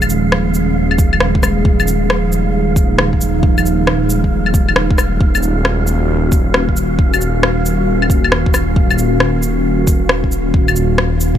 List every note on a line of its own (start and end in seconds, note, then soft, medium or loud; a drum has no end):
0.00 5.20 D#1 medium
0.00 5.17 F3 medium
0.00 5.17 G#3 medium
0.00 1.62 C#4 medium
0.00 5.17 G#4 medium
0.00 11.38 F5 medium
0.00 claves medium
0.00 shaker soft
0.10 shaker medium
0.32 cross-stick loud
0.54 shaker medium
0.91 claves soft
0.98 kick loud
0.98 shaker medium
1.13 claves medium
1.20 cross-stick loud
1.35 kick loud
1.43 cross-stick medium
1.43 claves medium
1.43 shaker medium
1.65 5.17 D#4 medium
1.65 kick loud
1.80 claves medium
1.80 shaker soft
1.88 shaker medium
2.10 cross-stick loud
2.32 shaker medium
2.76 kick loud
2.76 shaker medium
2.98 cross-stick loud
3.13 kick medium
3.21 shaker medium
3.43 kick loud
3.58 claves medium
3.58 shaker soft
3.66 shaker medium
3.87 cross-stick loud
4.10 shaker medium
4.24 kick medium
4.46 claves soft
4.54 kick loud
4.54 shaker medium
4.69 claves medium
4.76 cross-stick loud
4.91 kick loud
4.98 cross-stick medium
4.98 claves soft
4.98 shaker medium
5.21 11.38 D#1 medium
5.21 11.38 D#3 medium
5.21 11.38 A#3 medium
5.21 11.38 C#4 medium
5.21 11.38 F#4 medium
5.21 kick loud
5.35 claves medium
5.35 shaker soft
5.43 shaker medium
5.65 cross-stick loud
5.87 shaker medium
6.32 kick loud
6.32 shaker medium
6.54 cross-stick loud
6.69 kick medium
6.77 shaker medium
6.99 kick loud
7.14 claves medium
7.14 shaker soft
7.21 shaker medium
7.43 cross-stick loud
7.66 shaker medium
8.02 claves soft
8.10 kick loud
8.10 shaker soft
8.24 claves medium
8.32 cross-stick loud
8.46 kick medium
8.54 cross-stick medium
8.54 claves soft
8.54 shaker soft
8.76 kick loud
8.91 claves medium
8.91 shaker soft
8.98 shaker medium
9.20 cross-stick medium
9.43 shaker medium
9.87 kick loud
9.87 shaker medium
10.09 cross-stick loud
10.24 kick medium
10.32 shaker medium
10.54 kick loud
10.68 claves medium
10.68 shaker soft
10.76 shaker medium
10.98 cross-stick loud
11.20 shaker medium
11.35 kick medium